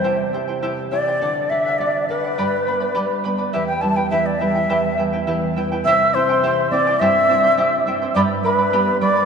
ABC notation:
X:1
M:2/4
L:1/16
Q:1/4=104
K:Clyd
V:1 name="Quena"
c2 z4 d2- | d2 e2 d2 B2- | B6 z2 | e g a g e d e2- |
e2 z6 | e'2 c'4 d'2 | e'6 z2 | d'2 b4 d'2 |]
V:2 name="Charango"
[EGceg]2 [Eceg] [Ecg] [EGceg]2 [Eceg] [Ecg] | [Adf]2 [Adf] [df] [Adf]2 [Adf] [df] | [GBdgb]2 [Bdgb] [Bdb] [GBdgb]2 [Bdgb] [Bdb] | [EGBeg]2 [EBeg] [EBg] [EGBeg]2 [EBeg] [EBg] |
[EGBeg]2 [EBeg] [EBg] [EGBeg]2 [EBeg] [EBg] | [EGceg]2 [Eceg] [Ecg] [EGceg]2 [Eceg] [Ecg] | [EGceg]2 [Eceg] [Ecg] [EGceg]2 [Eceg] [Ecg] | [GBdgb]2 [Bdgb] [Bdb] [GBdgb]2 [Bdgb] [Bdb] |]
V:3 name="Quena"
c2 z4 d2- | d2 e2 d2 B2- | B6 z2 | e g a g e d e2- |
e2 z6 | e2 c4 d2 | e6 z2 | d2 B4 d2 |]
V:4 name="Nylon-string guitar" clef=bass
C,2 G2 E2 G2 | D,2 A2 F2 A2 | G,,2 B,2 G,2 B,2 | E,,2 G,2 E,2 G,2 |
E,,2 G,2 E,2 G,2 | C,2 C2 E2 C2 | G,,2 C2 E2 C2 | G,,2 G,2 B,2 G,2 |]